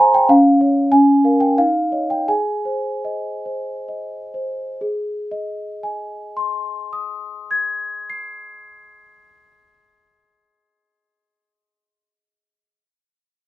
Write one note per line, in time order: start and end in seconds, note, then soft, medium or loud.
0.00 0.26 G#4 medium
0.00 0.32 C5 soft
0.00 0.29 F5 soft
0.00 0.14 G#5 medium
0.00 0.32 A#5 medium
0.00 0.32 C6 medium
0.14 0.29 G5 medium
0.29 0.90 C#4 medium
0.29 0.60 F5 medium
0.61 0.89 C#5 soft
0.61 0.89 F5 soft
0.92 1.56 C#4 medium
0.92 1.41 G#5 medium
1.24 1.54 A#4 soft
1.24 1.55 F5 soft
1.40 1.57 G5 medium
1.58 2.27 D#4 medium
1.58 2.10 F5 medium
1.92 2.25 C#5 soft
1.92 2.25 D#5 soft
2.10 2.28 G5 medium
2.28 4.78 G#4 soft
2.28 3.89 G#5 medium
2.65 3.29 C5 soft
3.05 3.71 D#5 soft
3.46 4.16 C5 soft
3.88 4.63 D#5 soft
4.34 4.82 C5 soft
4.81 9.18 G#4 soft
5.31 9.69 D#5 soft
5.83 10.21 G#5 soft
6.37 10.74 C6 soft
6.93 11.30 D#6 soft
7.51 11.88 G#6 soft
8.10 12.11 C7 soft